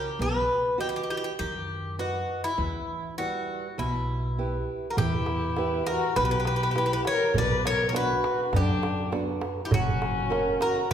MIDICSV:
0, 0, Header, 1, 6, 480
1, 0, Start_track
1, 0, Tempo, 595238
1, 165, Time_signature, 4, 2, 24, 8
1, 8816, End_track
2, 0, Start_track
2, 0, Title_t, "Bouzouki"
2, 0, Program_c, 0, 25
2, 0, Note_on_c, 0, 67, 82
2, 156, Note_off_c, 0, 67, 0
2, 175, Note_on_c, 0, 71, 81
2, 618, Note_off_c, 0, 71, 0
2, 649, Note_on_c, 0, 67, 78
2, 704, Note_off_c, 0, 67, 0
2, 717, Note_on_c, 0, 67, 59
2, 766, Note_off_c, 0, 67, 0
2, 775, Note_on_c, 0, 67, 63
2, 824, Note_off_c, 0, 67, 0
2, 834, Note_on_c, 0, 67, 53
2, 881, Note_off_c, 0, 67, 0
2, 890, Note_on_c, 0, 67, 67
2, 936, Note_off_c, 0, 67, 0
2, 946, Note_on_c, 0, 67, 60
2, 992, Note_off_c, 0, 67, 0
2, 1001, Note_on_c, 0, 67, 65
2, 1061, Note_off_c, 0, 67, 0
2, 1121, Note_on_c, 0, 67, 82
2, 1572, Note_off_c, 0, 67, 0
2, 1608, Note_on_c, 0, 66, 68
2, 1942, Note_off_c, 0, 66, 0
2, 1968, Note_on_c, 0, 64, 80
2, 2535, Note_off_c, 0, 64, 0
2, 2565, Note_on_c, 0, 66, 76
2, 3053, Note_off_c, 0, 66, 0
2, 3056, Note_on_c, 0, 64, 64
2, 3739, Note_off_c, 0, 64, 0
2, 3955, Note_on_c, 0, 70, 56
2, 4009, Note_off_c, 0, 70, 0
2, 4016, Note_on_c, 0, 67, 80
2, 4699, Note_off_c, 0, 67, 0
2, 4729, Note_on_c, 0, 70, 81
2, 4951, Note_off_c, 0, 70, 0
2, 4970, Note_on_c, 0, 71, 83
2, 5030, Note_off_c, 0, 71, 0
2, 5040, Note_on_c, 0, 71, 64
2, 5080, Note_off_c, 0, 71, 0
2, 5089, Note_on_c, 0, 71, 64
2, 5149, Note_off_c, 0, 71, 0
2, 5158, Note_on_c, 0, 71, 54
2, 5210, Note_off_c, 0, 71, 0
2, 5219, Note_on_c, 0, 71, 63
2, 5276, Note_off_c, 0, 71, 0
2, 5291, Note_on_c, 0, 71, 52
2, 5338, Note_off_c, 0, 71, 0
2, 5348, Note_on_c, 0, 71, 59
2, 5401, Note_off_c, 0, 71, 0
2, 5412, Note_on_c, 0, 71, 50
2, 5457, Note_off_c, 0, 71, 0
2, 5467, Note_on_c, 0, 71, 59
2, 5521, Note_off_c, 0, 71, 0
2, 5530, Note_on_c, 0, 71, 57
2, 5580, Note_off_c, 0, 71, 0
2, 5590, Note_on_c, 0, 71, 72
2, 5643, Note_off_c, 0, 71, 0
2, 5704, Note_on_c, 0, 73, 96
2, 5941, Note_off_c, 0, 73, 0
2, 5952, Note_on_c, 0, 74, 95
2, 6163, Note_off_c, 0, 74, 0
2, 6183, Note_on_c, 0, 73, 97
2, 6352, Note_off_c, 0, 73, 0
2, 6362, Note_on_c, 0, 73, 68
2, 6412, Note_off_c, 0, 73, 0
2, 6419, Note_on_c, 0, 71, 90
2, 6906, Note_off_c, 0, 71, 0
2, 6906, Note_on_c, 0, 67, 76
2, 7342, Note_off_c, 0, 67, 0
2, 7783, Note_on_c, 0, 67, 63
2, 7841, Note_off_c, 0, 67, 0
2, 7853, Note_on_c, 0, 66, 82
2, 8534, Note_off_c, 0, 66, 0
2, 8564, Note_on_c, 0, 70, 85
2, 8785, Note_off_c, 0, 70, 0
2, 8816, End_track
3, 0, Start_track
3, 0, Title_t, "Violin"
3, 0, Program_c, 1, 40
3, 3971, Note_on_c, 1, 66, 44
3, 4014, Note_off_c, 1, 66, 0
3, 4033, Note_on_c, 1, 64, 68
3, 4707, Note_off_c, 1, 64, 0
3, 4758, Note_on_c, 1, 66, 67
3, 4967, Note_off_c, 1, 66, 0
3, 4993, Note_on_c, 1, 67, 73
3, 5667, Note_off_c, 1, 67, 0
3, 5715, Note_on_c, 1, 70, 85
3, 5925, Note_off_c, 1, 70, 0
3, 5965, Note_on_c, 1, 71, 90
3, 6170, Note_off_c, 1, 71, 0
3, 6193, Note_on_c, 1, 70, 84
3, 6350, Note_off_c, 1, 70, 0
3, 6355, Note_on_c, 1, 70, 56
3, 6404, Note_off_c, 1, 70, 0
3, 6421, Note_on_c, 1, 66, 77
3, 6860, Note_off_c, 1, 66, 0
3, 6909, Note_on_c, 1, 62, 70
3, 7344, Note_off_c, 1, 62, 0
3, 7793, Note_on_c, 1, 64, 49
3, 7842, Note_off_c, 1, 64, 0
3, 7856, Note_on_c, 1, 61, 77
3, 8536, Note_off_c, 1, 61, 0
3, 8578, Note_on_c, 1, 66, 64
3, 8793, Note_off_c, 1, 66, 0
3, 8816, End_track
4, 0, Start_track
4, 0, Title_t, "Steel-string acoustic guitar"
4, 0, Program_c, 2, 25
4, 166, Note_on_c, 2, 59, 66
4, 629, Note_on_c, 2, 66, 48
4, 631, Note_off_c, 2, 59, 0
4, 640, Note_on_c, 2, 71, 44
4, 641, Note_on_c, 2, 75, 55
4, 1020, Note_off_c, 2, 66, 0
4, 1025, Note_off_c, 2, 75, 0
4, 1027, Note_off_c, 2, 71, 0
4, 1122, Note_on_c, 2, 51, 64
4, 1590, Note_off_c, 2, 51, 0
4, 1603, Note_on_c, 2, 66, 43
4, 1609, Note_on_c, 2, 71, 42
4, 1614, Note_on_c, 2, 75, 47
4, 1989, Note_off_c, 2, 66, 0
4, 1990, Note_off_c, 2, 71, 0
4, 1995, Note_off_c, 2, 75, 0
4, 2078, Note_on_c, 2, 52, 66
4, 2548, Note_off_c, 2, 52, 0
4, 2565, Note_on_c, 2, 64, 44
4, 2572, Note_on_c, 2, 55, 42
4, 2575, Note_on_c, 2, 71, 51
4, 2950, Note_off_c, 2, 64, 0
4, 2954, Note_off_c, 2, 55, 0
4, 2955, Note_off_c, 2, 71, 0
4, 3048, Note_on_c, 2, 47, 62
4, 3513, Note_off_c, 2, 47, 0
4, 3535, Note_on_c, 2, 64, 41
4, 3539, Note_on_c, 2, 67, 41
4, 3542, Note_on_c, 2, 71, 48
4, 3916, Note_off_c, 2, 64, 0
4, 3918, Note_off_c, 2, 67, 0
4, 3920, Note_off_c, 2, 71, 0
4, 4027, Note_on_c, 2, 52, 64
4, 4483, Note_off_c, 2, 52, 0
4, 4495, Note_on_c, 2, 64, 50
4, 4500, Note_on_c, 2, 67, 44
4, 4502, Note_on_c, 2, 71, 56
4, 4876, Note_off_c, 2, 64, 0
4, 4878, Note_off_c, 2, 67, 0
4, 4880, Note_off_c, 2, 71, 0
4, 4968, Note_on_c, 2, 47, 69
4, 5432, Note_off_c, 2, 47, 0
4, 5448, Note_on_c, 2, 64, 45
4, 5453, Note_on_c, 2, 71, 52
4, 5457, Note_on_c, 2, 67, 41
4, 5831, Note_off_c, 2, 64, 0
4, 5834, Note_off_c, 2, 71, 0
4, 5836, Note_off_c, 2, 67, 0
4, 5919, Note_on_c, 2, 47, 67
4, 6386, Note_on_c, 2, 59, 49
4, 6387, Note_off_c, 2, 47, 0
4, 6392, Note_on_c, 2, 62, 48
4, 6396, Note_on_c, 2, 66, 54
4, 6777, Note_off_c, 2, 59, 0
4, 6781, Note_off_c, 2, 62, 0
4, 6782, Note_off_c, 2, 66, 0
4, 6890, Note_on_c, 2, 50, 73
4, 7352, Note_off_c, 2, 50, 0
4, 7352, Note_on_c, 2, 59, 46
4, 7355, Note_on_c, 2, 62, 41
4, 7358, Note_on_c, 2, 66, 54
4, 7740, Note_off_c, 2, 59, 0
4, 7742, Note_off_c, 2, 62, 0
4, 7743, Note_off_c, 2, 66, 0
4, 7828, Note_on_c, 2, 54, 68
4, 8300, Note_off_c, 2, 54, 0
4, 8305, Note_on_c, 2, 61, 51
4, 8308, Note_on_c, 2, 66, 47
4, 8312, Note_on_c, 2, 70, 54
4, 8696, Note_off_c, 2, 61, 0
4, 8696, Note_off_c, 2, 66, 0
4, 8699, Note_off_c, 2, 70, 0
4, 8816, End_track
5, 0, Start_track
5, 0, Title_t, "Upright bass"
5, 0, Program_c, 3, 32
5, 156, Note_on_c, 3, 35, 96
5, 327, Note_off_c, 3, 35, 0
5, 1126, Note_on_c, 3, 42, 80
5, 1798, Note_off_c, 3, 42, 0
5, 2081, Note_on_c, 3, 40, 91
5, 2251, Note_off_c, 3, 40, 0
5, 3050, Note_on_c, 3, 35, 82
5, 3721, Note_off_c, 3, 35, 0
5, 4008, Note_on_c, 3, 40, 95
5, 4679, Note_off_c, 3, 40, 0
5, 4970, Note_on_c, 3, 35, 89
5, 5640, Note_off_c, 3, 35, 0
5, 5930, Note_on_c, 3, 35, 92
5, 6600, Note_off_c, 3, 35, 0
5, 6878, Note_on_c, 3, 42, 93
5, 7551, Note_off_c, 3, 42, 0
5, 7839, Note_on_c, 3, 30, 88
5, 8511, Note_off_c, 3, 30, 0
5, 8816, End_track
6, 0, Start_track
6, 0, Title_t, "Darbuka"
6, 4013, Note_on_c, 9, 64, 82
6, 4093, Note_off_c, 9, 64, 0
6, 4244, Note_on_c, 9, 63, 60
6, 4325, Note_off_c, 9, 63, 0
6, 4371, Note_on_c, 9, 63, 24
6, 4451, Note_off_c, 9, 63, 0
6, 4488, Note_on_c, 9, 63, 60
6, 4568, Note_off_c, 9, 63, 0
6, 4731, Note_on_c, 9, 63, 67
6, 4811, Note_off_c, 9, 63, 0
6, 4848, Note_on_c, 9, 63, 26
6, 4928, Note_off_c, 9, 63, 0
6, 4969, Note_on_c, 9, 63, 66
6, 4969, Note_on_c, 9, 64, 58
6, 5049, Note_off_c, 9, 63, 0
6, 5049, Note_off_c, 9, 64, 0
6, 5092, Note_on_c, 9, 63, 24
6, 5173, Note_off_c, 9, 63, 0
6, 5202, Note_on_c, 9, 63, 69
6, 5283, Note_off_c, 9, 63, 0
6, 5332, Note_on_c, 9, 63, 21
6, 5412, Note_off_c, 9, 63, 0
6, 5449, Note_on_c, 9, 63, 66
6, 5530, Note_off_c, 9, 63, 0
6, 5568, Note_on_c, 9, 63, 25
6, 5648, Note_off_c, 9, 63, 0
6, 5684, Note_on_c, 9, 63, 63
6, 5765, Note_off_c, 9, 63, 0
6, 5922, Note_on_c, 9, 64, 88
6, 6002, Note_off_c, 9, 64, 0
6, 6173, Note_on_c, 9, 63, 66
6, 6253, Note_off_c, 9, 63, 0
6, 6283, Note_on_c, 9, 63, 26
6, 6364, Note_off_c, 9, 63, 0
6, 6407, Note_on_c, 9, 63, 67
6, 6487, Note_off_c, 9, 63, 0
6, 6645, Note_on_c, 9, 63, 73
6, 6726, Note_off_c, 9, 63, 0
6, 6760, Note_on_c, 9, 63, 27
6, 6841, Note_off_c, 9, 63, 0
6, 6877, Note_on_c, 9, 63, 70
6, 6877, Note_on_c, 9, 64, 62
6, 6958, Note_off_c, 9, 63, 0
6, 6958, Note_off_c, 9, 64, 0
6, 7001, Note_on_c, 9, 63, 28
6, 7082, Note_off_c, 9, 63, 0
6, 7121, Note_on_c, 9, 63, 75
6, 7202, Note_off_c, 9, 63, 0
6, 7244, Note_on_c, 9, 63, 24
6, 7324, Note_off_c, 9, 63, 0
6, 7359, Note_on_c, 9, 63, 73
6, 7440, Note_off_c, 9, 63, 0
6, 7478, Note_on_c, 9, 63, 27
6, 7559, Note_off_c, 9, 63, 0
6, 7592, Note_on_c, 9, 63, 75
6, 7672, Note_off_c, 9, 63, 0
6, 7835, Note_on_c, 9, 64, 102
6, 7915, Note_off_c, 9, 64, 0
6, 8079, Note_on_c, 9, 63, 71
6, 8160, Note_off_c, 9, 63, 0
6, 8203, Note_on_c, 9, 63, 30
6, 8283, Note_off_c, 9, 63, 0
6, 8321, Note_on_c, 9, 63, 68
6, 8402, Note_off_c, 9, 63, 0
6, 8554, Note_on_c, 9, 63, 77
6, 8635, Note_off_c, 9, 63, 0
6, 8675, Note_on_c, 9, 63, 27
6, 8756, Note_off_c, 9, 63, 0
6, 8816, End_track
0, 0, End_of_file